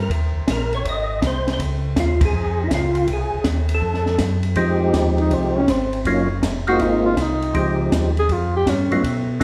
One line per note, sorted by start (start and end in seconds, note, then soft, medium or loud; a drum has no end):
0.02 0.12 A#4 medium
0.10 0.33 D#2 medium
0.10 kick soft
0.10 ride medium
0.35 0.41 D#2 soft
0.48 0.84 A#1 medium
0.48 0.74 A#4 medium
0.48 kick soft
0.48 snare medium
0.48 hi-hat pedal medium
0.48 ride medium
0.73 0.86 C#5 loud
0.73 ride soft
0.85 1.21 G#1 medium
0.85 kick soft
0.85 ride medium
0.89 1.22 D#5 medium
1.22 1.58 C2 medium
1.22 kick soft
1.22 snare medium
1.22 hi-hat pedal soft
1.22 ride medium
1.27 1.50 C5 medium
1.47 snare medium
1.47 ride soft
1.53 1.62 C5 medium
1.59 1.95 C#2 medium
1.59 kick soft
1.59 ride medium
1.96 2.33 D#2 medium
1.96 2.21 F4 medium
1.96 kick soft
1.96 snare medium
1.96 hi-hat pedal medium
1.96 ride medium
2.21 2.61 G#4 loud
2.21 kick medium
2.21 ride medium
2.33 2.69 F2 medium
2.64 2.69 D#4 medium
2.64 2.71 E4 medium
2.71 3.07 C#2 medium
2.71 3.07 F4 medium
2.71 kick soft
2.71 snare medium
2.71 hi-hat pedal medium
2.71 ride medium
2.95 ride soft
3.07 3.31 C2 medium
3.07 kick soft
3.07 ride medium
3.13 3.45 G#4 medium
3.32 3.39 C2 soft
3.44 3.81 D#2 medium
3.44 kick soft
3.44 snare medium
3.44 hi-hat pedal medium
3.44 ride medium
3.69 ride medium
3.74 4.19 A4 loud
3.82 4.18 F2 medium
3.82 kick soft
3.94 snare soft
4.06 snare soft
4.18 4.55 F#2 medium
4.18 kick soft
4.18 snare medium
4.18 hi-hat pedal medium
4.18 ride medium
4.43 ride soft
4.56 4.92 F2 medium
4.56 5.61 F3 medium
4.56 5.61 G#3 medium
4.56 5.61 C4 medium
4.56 5.61 D#4 medium
4.56 5.61 G4 medium
4.56 kick soft
4.56 ride medium
4.93 5.30 D#2 medium
4.93 kick soft
4.93 snare medium
4.93 hi-hat pedal medium
4.93 ride medium
5.18 5.35 D#4 medium
5.18 ride soft
5.30 5.67 C2 medium
5.30 5.59 C4 medium
5.30 kick soft
5.30 ride medium
5.57 5.72 C#4 medium
5.68 6.04 G#1 medium
5.68 6.07 C4 medium
5.68 kick soft
5.68 snare medium
5.68 hi-hat pedal soft
5.68 ride medium
5.93 ride soft
6.05 6.42 F#1 medium
6.05 6.28 F#3 medium
6.05 6.29 A#3 soft
6.05 6.29 C#4 soft
6.05 6.29 D#4 soft
6.05 6.29 F4 medium
6.05 kick soft
6.05 ride medium
6.42 6.79 F1 medium
6.42 kick soft
6.42 snare medium
6.42 hi-hat pedal medium
6.42 ride medium
6.67 7.15 G#3 medium
6.67 7.15 A#3 medium
6.67 7.15 C4 medium
6.67 7.15 D#4 medium
6.67 7.15 F4 medium
6.67 6.83 F#4 medium
6.67 ride soft
6.79 7.16 G#1 medium
6.79 7.05 D#4 medium
6.79 kick soft
6.79 ride medium
7.06 7.23 F4 medium
7.17 7.53 C2 medium
7.17 kick soft
7.17 snare medium
7.17 hi-hat pedal soft
7.17 ride medium
7.22 7.57 D#4 medium
7.42 ride soft
7.54 7.91 C#2 medium
7.54 8.11 F3 medium
7.54 8.11 G#3 medium
7.54 8.12 C4 medium
7.54 8.12 D#4 medium
7.54 8.12 G4 medium
7.54 kick soft
7.54 ride medium
7.92 8.28 D#2 medium
7.92 kick soft
7.92 snare medium
7.92 hi-hat pedal medium
7.92 ride medium
8.17 8.34 G#4 loud
8.17 ride soft
8.29 8.65 F2 medium
8.29 8.55 F4 medium
8.29 kick soft
8.29 ride medium
8.56 8.71 G4 medium
8.66 8.89 G2 medium
8.66 9.05 C#4 medium
8.66 kick soft
8.66 snare medium
8.66 hi-hat pedal soft
8.66 ride medium
8.91 8.97 G2 soft
8.91 9.02 F#3 medium
8.91 9.03 A3 medium
8.91 9.03 B3 medium
8.91 9.03 D#4 medium
8.91 9.03 F4 medium
8.91 ride soft
9.04 9.40 B2 medium
9.04 kick soft
9.04 ride medium
9.40 9.43 F#3 medium
9.40 9.43 A3 medium
9.40 9.43 B3 medium